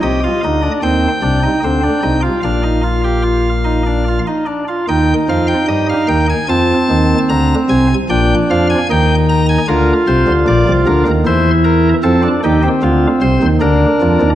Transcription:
<<
  \new Staff \with { instrumentName = "Pipe organ" } { \time 3/4 \key ees \major \tempo 4 = 75 << { ees''4 g''2 | f''2~ f''8 r8 | g''8 f''16 g''16 ees''16 f''16 g''16 aes''16 a''4 | bes''8 aes''8 g''8 f''16 aes''16 g''8 bes''16 aes''16 |
bes'8 c''8 d''8 bes'8 c''8 bes'8 | a'8 g'8 f'8 c''8 bes'4 | } \\ { g'16 f'16 ees'16 d'16 c'8 d'16 ees'16 c'16 d'16 ees'16 f'16 | d'16 ees'16 f'16 g'16 f'8 ees'16 d'16 f'16 ees'16 d'16 f'16 | ees'2 c'4~ | c'4 d'4 ees'4 |
f'2 e'4 | c'16 d'16 ees'16 c'4~ c'16 d'4 | } >> }
  \new Staff \with { instrumentName = "Pipe organ" } { \clef bass \time 3/4 \key ees \major <c, c>8 <d, d>8 <ees, ees>8 <c, c>8 <d, d>8 <c, c>8 | <bes,, bes,>2~ <bes,, bes,>8 r8 | <ees, ees>8 <f, f>8 <g, g>8 <ees, ees>8 <f, f>8 <ees, ees>8 | <d, d>8 <c, c>8 <bes,, bes,>8 <f, f>8 <ees, ees>4 |
<d, d>8 <c, c>16 <d, d>16 <bes,, bes,>16 <c, c>16 <d, d>16 <ees, ees>16 <e, e>4 | <f, f>8 <ees, ees>8 <d, d>8 <c, c>16 <ees, ees>16 <d, d>8 <f, f>16 <ees, ees>16 | }
>>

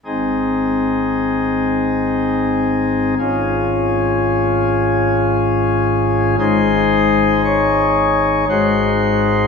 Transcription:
<<
  \new Staff \with { instrumentName = "Pipe organ" } { \time 3/4 \key aes \major \tempo 4 = 57 r2. | r2. | c''4 des''4 c''4 | }
  \new Staff \with { instrumentName = "Pipe organ" } { \time 3/4 \key aes \major <aes,, aes, c' ees' aes'>2. | <aes,, aes, des' f' aes'>2. | <aes,, aes, aes ees' aes'>2 <aes,, aes, aes ees' ges'>4 | }
>>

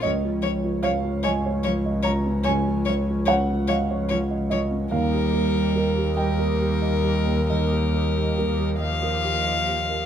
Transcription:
<<
  \new Staff \with { instrumentName = "Violin" } { \time 6/8 \key ees \dorian \tempo 4. = 48 des''8 des''8 des''8 des''8 des''8 des''8 | des''8 des''8 des''8 des''8 des''8 des''8 | bes'4. bes'4. | bes'4. f''4. | }
  \new Staff \with { instrumentName = "Felt piano" } { \time 6/8 \key ees \dorian << { ees''4 f''8 aes''4 bes''8 | aes''4 ges''8 f''4 ees''8 | f''4. g''4. | ees''2~ ees''8 r8 | } \\ { des,16 f'16 des''16 f'16 des''16 f'16 ees''16 des''16 f'16 ees''16 f'16 des'16 | des,16 f'16 des''16 f'16 des''16 f'16 ees''16 des''16 f'16 ees''16 f'16 des'16 | ees,16 g'16 bes'16 g'16 bes'16 g'16 ees''16 bes'16 g'16 ees''16 g'16 bes16 | ees,16 g'16 bes'16 g'16 bes'16 g'16 ees''16 bes'16 g'16 ees''16 g'16 bes16 | } >> }
  \new Staff \with { instrumentName = "Analog synth pad" } { \time 6/8 \key ees \dorian <f des' des''>2.~ | <f des' des''>2. | <bes g' ees''>2.~ | <bes g' ees''>2. | }
  \new Staff \with { instrumentName = "Cello" } { \clef bass \time 6/8 \key ees \dorian f8 f8 f8 f8 f8 f8 | f8 f8 f8 f8 f8 f8 | g4. g4. | g4. f4. | }
  \new Staff \with { instrumentName = "Double bass" } { \clef bass \time 6/8 \key ees \dorian des,2.~ | des,2. | ees,2.~ | ees,2. | }
>>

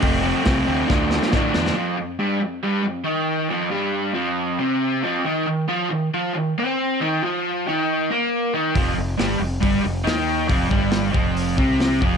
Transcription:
<<
  \new Staff \with { instrumentName = "Overdriven electric guitar" } { \clef bass \time 4/4 \key d \minor \tempo 4 = 138 <f, c f a c'>8 <f a c'>8 <c f a c'>8 <f a c'>8 <d f a d'>4 <d f a d'>8 <f a d'>8 | \key f \mixolydian <f, f>8 f,8 <g, g>8 f,8 <g, g>8 f,8 <ees ees'>4 | <f, f>8 <g, g>4 <f, f>4 <c c'>4 <f, f>8 | <ees ees'>8 ees8 <f f'>8 ees8 <f f'>8 ees8 <c' c''>4 |
<ees ees'>8 <f f'>4 <ees ees'>4 <bes bes'>4 <ees ees'>8 | <f, f>8 f,8 <g, g>8 f,8 <g, g>8 f,8 <ees ees'>4 | <f, f>8 <g, g>4 <f, f>4 <c c'>4 <f, f>8 | }
  \new Staff \with { instrumentName = "Fingered electric bass" } { \clef bass \time 4/4 \key d \minor f,,4 c,8 d,8 d,4 a,8 e,8 | \key f \mixolydian r1 | r1 | r1 |
r1 | f,,8 f,,8 g,,8 f,,8 g,,8 f,,8 ees,4 | f,,8 g,,4 f,,4 c,4 f,,8 | }
  \new DrumStaff \with { instrumentName = "Drums" } \drummode { \time 4/4 <hho bd>4 <hho bd sn>4 <bd sn>8 sn16 sn16 <bd sn>8 sn16 sn16 | r4 r4 r4 r4 | r4 r4 r4 r4 | r4 r4 r4 r4 |
r4 r4 r4 r4 | <hho bd>4 <hho sn>4 <hho bd>4 <hho sn>4 | <hho bd>8 bd8 <hho sn>8 bd8 hho8 bd8 <hho sn>8 bd8 | }
>>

